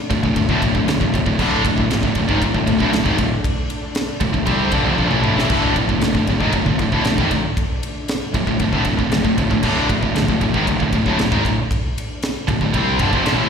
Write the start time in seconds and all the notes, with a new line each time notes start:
Already playing: D3 A3 D4
0.10 D1 D2 A2, kick, ride
0.23 D1 D2 A2, kick
0.36 D1 D2 A2, kick, ride
0.49 D1 D2 A2, kick
0.62 D1 D2 A2, kick, ride
0.75 D1 D2 A2, kick
0.87 D1 D2 A2, snare, ride
1.00 D1 D2 A2, kick
1.14 D1 D2 A2, kick, ride
1.26 D1 D2 A2, kick
1.39 D1 D2 A2 D3, kick, crash
1.65 D1 D2 A2, kick, ride
1.76 D1 D2 A2, kick
1.80 A2
1.90 D1 D2 A2, snare, ride
2.03 D1 D2 A2, kick
2.15 D1 D2 A2, kick, ride
2.29 G#1 G#2 D#3, kick
2.40 D1 D2 A2, kick, ride
2.45 A2
2.54 D1 D2 A2, kick
2.67 D1 D2 A2, kick, ride
2.80 D1 D2 A2, kick
2.92 D1 D2 A2, snare, ride
3.06 G#1 G#2 D#3, kick
3.18 D1 D2 A2, kick, ride
3.44 kick, ride
3.70 ride
3.95 snare, ride
4.20 D1 D2 A2, kick, ride
4.33 D1 D2 A2, kick
4.46 C2 C3 G3 C4, kick, ride
4.72 G1 G2 D3, kick, ride
4.83 F1 F2 C3
4.96 A#1 A#2 F3, kick
5.09 A1 A2 E3, mid tom
5.22 D1 D2 A2, mid tom
5.35 A1 A2 E3, snare
5.48 D1 D2 A2 D3, kick, crash
5.75 D1 D2 A2, kick, ride
5.88 D1 D2 A2, kick
6.00 D1 D2 A2, snare, ride
6.04 D2 A2
6.14 D1 D2 A2, kick
6.27 D1 D2 A2, kick, ride
6.39 G#1 G#2 D#3, kick
6.52 D1 D2 A2, kick, ride
6.66 D1 D2 A2, kick
6.79 D1 D2 A2, kick, ride
6.92 D1 D2 A2, kick
7.04 D1 D2 A2, snare, ride
7.18 G#1 G#2 D#3, kick
7.31 D1 D2 A2, kick, ride
7.57 kick, ride
7.83 ride
8.08 snare, ride
8.34 D1 D2 A2, kick, ride
8.47 D1 D2 A2, kick
8.59 D1 D2 A2, kick, ride
8.72 D1 D2 A2, kick
8.84 D1 D2 A2, kick, ride
8.97 D1 D2 A2, kick
9.10 D1 D2 A2, snare, ride
9.24 D1 D2 A2, kick
9.37 D1 D2 A2, kick, ride
9.51 D1 D2 A2, kick
9.63 D1 D2 A2 D3, kick, crash
9.89 D1 D2 A2, kick, ride
10.01 D1 D2 A2, kick
10.15 D1 D2 A2, snare, ride
10.28 D1 D2 A2, kick
10.41 D1 D2 A2, kick, ride
10.54 G#1 G#2 D#3, kick
10.67 D1 D2 A2, kick, ride
10.79 D1 D2 A2, kick
10.83 A2
10.93 D1 D2 A2, kick, ride
11.05 D1 D2 A2, kick
11.18 D1 D2 A2, snare, ride
11.32 G#1 G#2 D#3, kick
11.45 D1 D2 A2, kick, ride
11.71 kick, ride
11.98 ride
12.22 snare, ride
12.48 D1 D2 A2, kick, ride
12.61 D1 D2 A2, kick
12.74 C2 C3 G3 C4, kick, ride
12.99 G1 G2 D3, kick, ride
13.13 F1 F2 C3, kick
13.26 A#1 A#2 F3, snare, ride
13.37 A1 A2 E3